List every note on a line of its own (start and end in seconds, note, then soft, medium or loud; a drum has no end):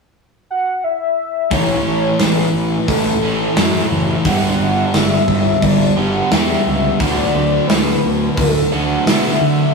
0.50 0.85 F#5 loud
0.84 1.54 E5 loud
1.51 1.75 A1 medium
1.51 3.21 A2 medium
1.51 3.21 E3 medium
1.51 3.21 A3 medium
1.51 3.21 C#4 medium
1.51 3.21 A4 medium
1.51 2.21 C#5 loud
1.51 kick loud
1.51 open hi-hat medium
1.87 2.09 A1 medium
2.19 2.43 A1 medium
2.19 2.87 B4 loud
2.19 snare loud
2.19 open hi-hat medium
2.53 2.76 A1 medium
2.88 3.11 A1 medium
2.88 4.23 A2 medium
2.88 4.24 E3 medium
2.88 4.24 A3 medium
2.88 3.53 A4 medium
2.88 kick loud
2.88 open hi-hat medium
3.22 3.46 A1 medium
3.22 3.55 A2 medium
3.22 3.56 E3 medium
3.22 3.56 A3 medium
3.22 3.55 C#4 medium
3.22 3.55 A4 medium
3.56 3.80 F#2 medium
3.56 4.23 A2 medium
3.56 4.23 E3 medium
3.56 4.24 A3 medium
3.56 4.24 C#4 medium
3.56 4.24 A4 medium
3.56 snare loud
3.56 open hi-hat medium
3.91 4.14 F#1 medium
4.25 4.48 G1 medium
4.25 5.95 G2 medium
4.25 5.95 D3 medium
4.25 5.95 G3 medium
4.25 5.97 B3 medium
4.25 5.96 D4 medium
4.25 5.95 G4 medium
4.25 4.95 F#5 loud
4.25 kick loud
4.25 open hi-hat medium
4.60 4.83 G1 medium
4.93 5.17 G1 medium
4.93 5.64 E5 loud
4.93 snare loud
4.93 open hi-hat medium
5.28 5.51 G1 medium
5.28 kick medium
5.62 5.86 G1 medium
5.62 6.98 G2 medium
5.62 6.98 D3 medium
5.62 6.99 G3 medium
5.62 6.00 D5 loud
5.62 kick loud
5.62 open hi-hat soft
5.97 6.20 G1 medium
5.97 6.29 G2 medium
5.97 6.29 D3 medium
5.97 6.30 G3 medium
5.97 6.32 B3 medium
5.97 6.32 D4 medium
5.97 6.29 G4 medium
5.97 6.34 F#5 medium
6.30 6.55 E2 medium
6.30 6.97 G2 medium
6.30 6.98 D3 medium
6.30 6.98 G3 medium
6.30 6.99 B3 medium
6.30 7.00 D4 medium
6.30 6.99 G4 medium
6.30 7.01 E5 loud
6.30 snare loud
6.30 open hi-hat medium
6.67 6.89 C#2 medium
6.99 7.23 D2 medium
6.99 8.69 D3 medium
6.99 8.70 F#3 medium
6.99 8.73 A3 medium
6.99 8.70 D4 loud
6.99 8.70 F#4 medium
6.99 7.69 D5 loud
6.99 kick loud
6.99 open hi-hat medium
7.35 7.58 D2 loud
7.68 7.92 D2 medium
7.68 8.39 B4 loud
7.68 snare loud
7.68 open hi-hat medium
8.05 8.27 D2 medium
8.36 8.61 D2 loud
8.36 9.72 D3 medium
8.36 9.74 A3 medium
8.36 9.73 D4 medium
8.36 8.73 A4 medium
8.36 kick loud
8.36 open hi-hat medium
8.72 8.96 D2 medium
8.72 9.05 D3 medium
8.72 9.05 F#3 medium
8.72 9.08 A3 medium
8.72 9.04 D4 medium
8.72 9.04 F#4 medium
8.72 9.07 F#5 medium
9.05 9.29 B2 medium
9.05 9.74 D3 medium
9.05 9.74 F#3 medium
9.05 9.74 A3 medium
9.05 9.74 D4 medium
9.05 9.74 E5 loud
9.05 snare loud
9.05 open hi-hat medium
9.10 9.74 F#4 medium
9.41 9.64 D3 medium